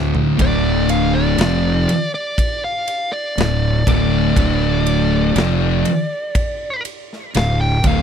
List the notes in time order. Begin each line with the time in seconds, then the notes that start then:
Already playing: D2 A2 D3
0.15 floor tom
0.39 D1 D2 A2 D3 D5, kick, ride
0.89 F5, ride
1.14 D5
1.38 F1 F2 C3 F3, snare, ride
1.89 ride
2.14 D5
2.38 kick, ride
2.64 F5
2.87 ride
3.13 D5
3.37 D1 D2 A2, snare, ride
3.87 D1 D2 A2 D3 D5, kick, ride
4.36 D1 D2 A2 D3, kick, ride
4.86 ride
5.35 F1 F2 C3 F3, snare, ride
5.85 ride
6.35 kick, ride
6.85 ride
7.13 snare
7.34 D1 D2 A2 F5, snare, ride
7.61 G5
7.84 D1 D2 A2 D3 F5, kick, ride